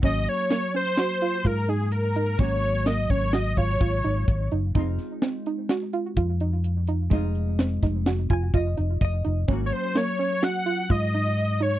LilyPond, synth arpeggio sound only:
\new Staff \with { instrumentName = "Synth arpeggio sound" } { \time 5/4 \key ges \lydian \tempo 4 = 127 des'4 bes8 des'8 ges'8 f'8 f'8 ees'4 ees'8 | des'4 bes8 des'8 ges'8 f'8 f'8 ees'4 ees'8 | ees'4 c'8 ees'8 ges'8 f'8 f'8 ees'4 ees'8 | ees'4 c'8 ees'8 ges'8 f'8 f'8 ees'4 ees'8 |
des'4 bes8 des'8 ges'8 f'8 f'8 ees'4 ees'8 | }